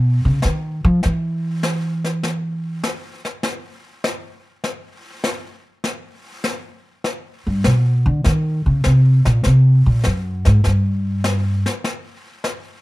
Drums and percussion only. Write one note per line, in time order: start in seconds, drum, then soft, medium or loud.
0.42 snare medium
1.03 brush sweep medium
1.03 snare soft
1.63 snare medium
2.04 snare soft
2.23 brush sweep soft
2.23 snare soft
2.83 snare medium
3.25 snare soft
3.43 brush sweep soft
3.43 snare soft
4.04 snare medium
4.64 brush sweep soft
4.64 snare soft
5.24 snare medium
5.84 brush sweep medium
5.84 snare soft
6.44 snare medium
7.04 brush sweep soft
7.04 snare soft
7.64 snare medium
8.24 brush sweep soft
8.24 snare soft
8.84 snare medium
9.25 snare soft
9.43 brush sweep soft
9.43 snare soft
10.04 snare medium
10.45 snare soft
10.64 brush sweep medium
10.64 snare soft
11.24 snare medium
11.66 snare soft
11.84 brush sweep medium
11.84 snare soft
12.44 snare medium